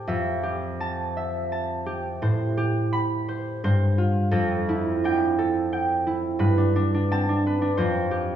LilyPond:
<<
  \new Staff \with { instrumentName = "Harp" } { \time 3/4 \key f \lydian \tempo 4 = 86 << { r4 a''2~ | a''4 b''4 c''4~ | c''4 g''2~ | g''4 a''4 c''4 | } \\ { <g' a' c'' e'' a''>8 g'4 e''8 a''8 g'8 | c''8 g'4 c''4 f'8 | a'8 e'4 a'8 g''8 e'8 | b'8 d'4 b'8 r8 g'8 | } >> }
  \new Staff \with { instrumentName = "Harp" } { \clef bass \time 3/4 \key f \lydian f,2. | a,2 g,4 | f,4 d'8 r4. | g,16 d'8 d'16 c'16 d'8 d'16 f,4 | }
>>